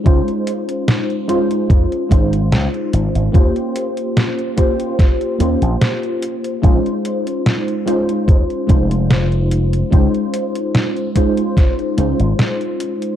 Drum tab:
HH |xxxxxxxxxxxxxxxx|xxxxxxxxxxxxxxxx|xxxxxxxxxxxxxxxx|xxxxxxxxxxxxxxxx|
SD |----o-------o---|----o---o---o---|----o-------o---|----o---o---o---|
BD |o-------o-o-----|o-----o-o-------|o-------o-o-----|o-----o-o-------|